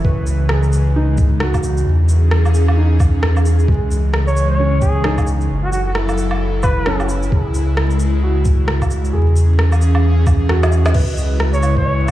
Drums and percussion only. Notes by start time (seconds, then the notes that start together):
0.05 kick
0.27 shaker
0.49 cross-stick
0.63 shaker
0.73 shaker
1.18 kick, shaker
1.40 cross-stick
1.54 kick, low woodblock, shaker
1.63 shaker
1.77 shaker
2.09 shaker
2.31 cross-stick
2.46 low woodblock, shaker
2.54 shaker
2.68 low woodblock
3.00 kick, low woodblock, shaker
3.23 cross-stick
3.37 low woodblock, shaker
3.46 shaker
3.59 shaker
3.68 kick
3.91 shaker
4.14 cross-stick
4.28 shaker
4.37 shaker
4.82 kick, shaker
5.04 cross-stick
5.18 kick, low woodblock, shaker
5.27 shaker
5.41 shaker
5.73 shaker
5.95 cross-stick
6.09 low woodblock, shaker
6.18 shaker
6.31 low woodblock
6.63 kick, low woodblock, shaker
6.86 cross-stick
7.00 low woodblock, shaker
7.09 shaker
7.23 shaker
7.32 kick
7.54 shaker
7.77 cross-stick
7.91 shaker
8.00 shaker
8.45 kick, shaker
8.68 cross-stick
8.82 kick, low woodblock, shaker
8.91 shaker
9.05 shaker
9.36 shaker
9.59 cross-stick
9.72 low woodblock, shaker
9.81 shaker
9.95 low woodblock
10.27 kick, low woodblock, shaker
10.49 cross-stick
10.63 snare, low woodblock, shaker
10.72 shaker
10.86 snare, shaker
10.94 kick, crash
11.17 shaker
11.40 cross-stick
11.54 shaker
11.63 low woodblock, shaker
11.77 kick